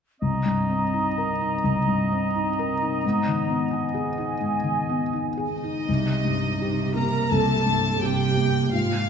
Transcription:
0.20 felt piano C2, clarinet C4, oboe D#5, flute section A#5
0.46 felt piano G2
0.70 felt piano C4
0.94 felt piano D#4
1.18 felt piano A#4
1.41 felt piano D#4
1.64 felt piano C2
1.87 felt piano G2
2.12 felt piano C4
2.35 felt piano D#4
2.59 felt piano A#4
2.82 felt piano D#4
3.04 felt piano G#2, clarinet B3
3.28 felt piano D#3
3.49 felt piano B3
3.71 felt piano D#4, flute section G#5
3.94 felt piano G#4
4.18 felt piano D#4
4.40 felt piano G#2
4.64 felt piano D#3
4.89 felt piano B3
5.13 felt piano D#4
5.37 felt piano G#4
5.50 viola section D#4, violin section D#5
5.63 felt piano D#4
5.88 felt piano C2, cello section C3
6.25 felt piano G2
6.60 cello section C3, felt piano C4 G4
6.96 felt piano A#3, viola section A#4, violin section A#5
7.31 felt piano C2, cello section C3, viola section A4, violin section A5
7.66 felt piano G2
8.01 cello section C3, felt piano C4 G4, viola section G4, violin section G5
8.37 felt piano A#3
8.72 cello section G#2, felt piano G#2, viola section F4, violin section F5

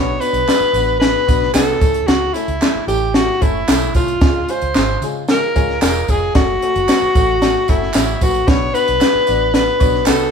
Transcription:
Already playing: fingered electric bass B1, upright piano B3 D4 F#4 B4, alto saxophone C#5
0.20 upright piano B3 D4 F#4 C#5, alto saxophone B4, closed hi-hat, tambourine
0.33 fingered electric bass B1, closed hi-hat
0.47 upright piano B3 D4 F#4 B4, snare, clap, closed hi-hat, tambourine
0.60 muted fingered electric bass stroke
0.73 fingered electric bass A1, upright piano B3 D4 F#4 B4, closed hi-hat, tambourine
1.00 upright piano B3 D4 F#4 B4, alto saxophone B4, snare, closed hi-hat, tambourine
1.27 fingered electric bass B1, upright piano B3 D4 F#4 B4, kick, closed hi-hat, tambourine
1.43 snare
1.54 fingered electric bass C2, upright piano B3 D4 F#4 B4, alto saxophone A4, snare, clap, closed hi-hat, tambourine
1.81 fingered electric bass C#2, upright piano A3 C#4 E4 A4, kick, closed hi-hat, tambourine
1.94 closed hi-hat
2.07 fingered electric bass C#2, alto saxophone F#4, snare, closed hi-hat, tambourine
2.34 upright piano A3 C#4 E4 A4, alto saxophone E4, closed hi-hat, tambourine
2.48 fingered electric bass C#2, closed hi-hat
2.61 upright piano A3 C#4 E4 A4, snare, clap, closed hi-hat, tambourine
2.75 muted fingered electric bass stroke
2.87 fingered electric bass A1, upright piano A3 C#4 E4 A4, alto saxophone G4, closed hi-hat, tambourine
3.14 upright piano A3 C#4 E4 G4, alto saxophone F#4, snare, closed hi-hat, tambourine
3.41 fingered electric bass F#1, upright piano A3 C#4 E4 A4, alto saxophone E4, kick, closed hi-hat, tambourine
3.68 fingered electric bass B1, upright piano A3 C#4 E4 A4, snare, clap, closed hi-hat, tambourine
3.94 fingered electric bass C2, upright piano A3 C#4 E4 A4, alto saxophone F4, kick, closed hi-hat, tambourine
4.08 closed hi-hat
4.21 fingered electric bass C#2, upright piano G#3 C#4 F4 G#4, kick, snare, closed hi-hat, tambourine
4.49 upright piano G#3 C#4 F4 G#4, alto saxophone C5, closed hi-hat, tambourine
4.62 fingered electric bass C#2, closed hi-hat
4.75 fingered electric bass G#1, upright piano G#3 C#4 F4 G#4, snare, clap, closed hi-hat, tambourine
5.02 fingered electric bass C#3, upright piano G#3 C#4 F4 G#4, closed hi-hat, tambourine
5.28 upright piano G#3 C#4 F4 G#4, alto saxophone A#4, snare, closed hi-hat, tambourine
5.55 fingered electric bass C#2, upright piano G#3 C#4 F4 G#4, kick, closed hi-hat, tambourine
5.70 snare
5.82 fingered electric bass E1, upright piano G#3 C#4 F4 G#4, alto saxophone A#4, snare, clap, closed hi-hat, tambourine
6.08 fingered electric bass F1, upright piano G#3 C#4 F4 G#4, alto saxophone G#4, kick, closed hi-hat, tambourine
6.34 fingered electric bass F#1, upright piano A3 C#4 F#4 A4, alto saxophone F#4, kick, snare, closed hi-hat, tambourine
6.62 upright piano A3 C#4 F#4 A4, closed hi-hat
6.76 fingered electric bass F#1, closed hi-hat
6.89 upright piano A3 C#4 F#4 B4, snare, clap, closed hi-hat, tambourine
7.02 muted fingered electric bass stroke
7.15 fingered electric bass A1, upright piano A3 C#4 F#4 A4, kick, closed hi-hat, tambourine
7.42 upright piano A3 C#4 F#4 A4, snare, closed hi-hat, tambourine
7.68 fingered electric bass F#1, upright piano A3 C#4 F#4 A4, alto saxophone E4, kick, closed hi-hat, tambourine
7.82 snare
7.94 fingered electric bass A1, upright piano A3 C#4 F#4 A4, snare, clap, closed hi-hat, tambourine
8.21 fingered electric bass A#1, upright piano A3 C#4 F#4 B4, alto saxophone F#4, kick, closed hi-hat, tambourine
8.35 closed hi-hat
8.47 fingered electric bass B1, upright piano B3 D4 F#4 B4, alto saxophone C#5, kick, snare, closed hi-hat, tambourine
8.73 upright piano B3 D4 F#4 B4, alto saxophone B4, closed hi-hat, tambourine
8.88 fingered electric bass B1, closed hi-hat
9.01 upright piano B3 D4 F#4 B4, snare, clap, closed hi-hat, tambourine
9.15 muted fingered electric bass stroke
9.27 fingered electric bass A1, upright piano B3 D4 F#4 D5, closed hi-hat, tambourine
9.53 upright piano B3 D4 F#4 A4, alto saxophone B4, snare, closed hi-hat, tambourine
9.80 fingered electric bass B1, upright piano B3 D4 F#4 C#5, kick, closed hi-hat, tambourine
9.94 snare
10.06 fingered electric bass C2, upright piano B3 D4 F#4 B4, alto saxophone A4, snare, clap, closed hi-hat, tambourine

